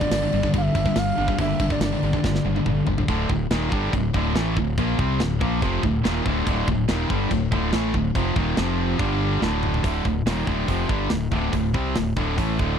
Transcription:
Already playing: G2 D3 G3 A#3 D4 G4 D5
0.01 G2 D3, kick
0.11 G1 G2 D3, snare, crash
0.22 G2 D3
0.33 G1 G2 D3, crash
0.43 G2 D3, kick
0.54 G1 G2 D3 F5, kick, crash
0.62 E5
0.75 G1 G2 D3, kick, crash
0.86 G2 D3, kick
0.96 G1 G2 D3 F5, snare, crash
1.18 G1 G2 D3 G3 A#3 D4 G4, crash
1.28 G2 D3, kick
1.38 G1 G2 D3 E5, kick, crash
1.59 G1 G2 D3, kick, crash
1.70 G2 D3 D5, kick
1.80 G1 G2 D3 D5, snare, crash
1.93 G2 D3
2.03 G1 G2 D3, crash
2.13 G2 D3, kick
2.24 G1 G2 D3, kick, snare
2.35 snare
2.45 G1 G2 D3
2.56 G2 D3, high tom
2.66 G1 G2 D3, mid tom
2.87 G1 G2 D3, floor tom
2.98 G2 D3, floor tom
3.08 D1 D2 A2 D3, kick, china
3.29 D1 D2 A2, kick
3.51 D#1 D#2 A#2 D#3, snare, china
3.72 G1 G2 D3 G3, kick
3.93 D1 D2 A2, kick, china
4.13 D1 D2 A2 D3, kick
4.35 A1 A2 E3 A3, snare, china
4.57 D1 D2 A2, kick
4.78 A#1 A#2 F3 A#3, kick, china
4.99 C2 C3 G3 C4, kick
5.20 D1 D2 A2, snare, china
5.40 A#1 A#2 F3 A#3, kick
5.62 F1 F2 C3 F3, kick, china
5.83 D1 D2 A2, kick
6.04 D#1 D#2 A#2 D#3, snare, china
6.25 D1 D2 A2 D3, kick
6.46 D1 D2 A2 D3, kick, china
6.67 D1 D2 A2, kick
6.88 D#1 D#2 A#2 D#3, snare, china
7.10 G1 G2 D3 G3, kick
7.31 D1 D2 A2, kick, china
7.51 D1 D2 A2 D3, kick
7.73 A1 A2 E3 A3, snare, china
7.94 D1 D2 A2, kick
8.15 F1 F2 C3 F3, kick, china
8.36 D#1 D#2 A#2 D#3, kick
8.57 F1 F2 C3 F3, snare, china
8.99 G1 G2 D3 G3, kick, china
9.42 D1 D2 A2 D3, snare
9.63 mid tom
9.74 floor tom
9.84 D1 D2 A2 D3, kick, open hi-hat
10.05 D1 D2 A2, kick
10.26 D#1 D#2 A#2 D#3, snare, open hi-hat
10.47 D1 D2 A2 D3, kick
10.68 F1 F2 C3 F3, kick, open hi-hat
10.89 G1 G2 D3 G3, kick
11.10 D1 D2 A2, snare, open hi-hat
11.31 D1 D2 A2 D3, kick
11.53 D1 D2 A2, kick, open hi-hat
11.74 C2 C3 G3 C4, kick
11.95 D1 D2 A2, snare, open hi-hat
12.16 D1 D2 A2 D3, kick
12.38 A1 A2 E3 A3, kick, open hi-hat
12.59 D1 D2 A2 D3, kick

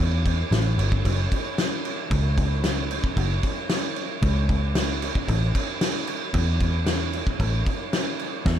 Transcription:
0.00 E2
0.25 kick, crash
0.51 A1, snare, crash
0.78 G1, crash
0.92 kick
1.05 F#1, kick, crash
1.32 kick, crash
1.58 snare, crash
1.85 crash
2.11 C#2, kick, crash
2.38 kick, crash
2.64 snare, crash
2.91 crash
3.04 kick
3.17 F#1, kick, crash
3.43 kick, crash
3.69 snare, crash
3.96 crash
4.22 C#2, kick, crash
4.49 kick, crash
4.75 snare, crash
5.02 crash
5.15 kick
5.28 A1, kick, crash
5.55 kick, crash
5.81 snare, crash
6.07 crash
6.34 E2, kick, crash
6.60 kick, crash
6.86 snare, crash
7.13 crash
7.27 kick
7.40 A1, kick, crash
7.66 kick, crash
7.93 snare, crash
8.19 crash
8.46 E2, kick, snare

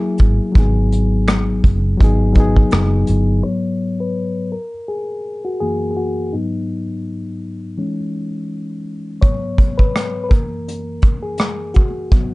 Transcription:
Already playing: F#3 A#3 E4 G#4
0.18 G#1, kick, closed hi-hat
0.52 G#1 F#3 A#3, kick, closed hi-hat
0.56 D#4 G#4
0.61 B3
0.92 closed hi-hat
1.28 finger snap, cross-stick, closed hi-hat
1.64 F#1, kick, closed hi-hat
1.97 G#1 F#3 B3, kick, closed hi-hat
2.02 D#4 G#4
2.33 F#3 B3, kick, closed hi-hat
2.37 D#4 G#4
2.56 kick
2.71 F#1, finger snap, cross-stick, closed hi-hat
3.07 G1, closed hi-hat
3.43 G#2 F#3 B3 C#5
4.00 B4
4.52 A#4
4.88 G#4
5.45 F#4
5.60 F#2 E3 A#3 G#4
5.90 G#4
5.97 F#4
6.33 G#2 F#3 B3 D#4
7.78 E3 G#3 C#4
9.21 G#2 F#3 B3 C#5, kick, closed hi-hat
9.58 kick, closed hi-hat
9.78 B4, kick
9.96 cross-stick, closed hi-hat
10.24 B4
10.29 F#2 E3 A#3 A#4, kick, closed hi-hat
10.68 closed hi-hat
11.02 kick, closed hi-hat
11.23 G#4
11.38 cross-stick, closed hi-hat
11.74 F#4, kick, closed hi-hat
12.11 G#2 F#3 B3, kick, closed hi-hat

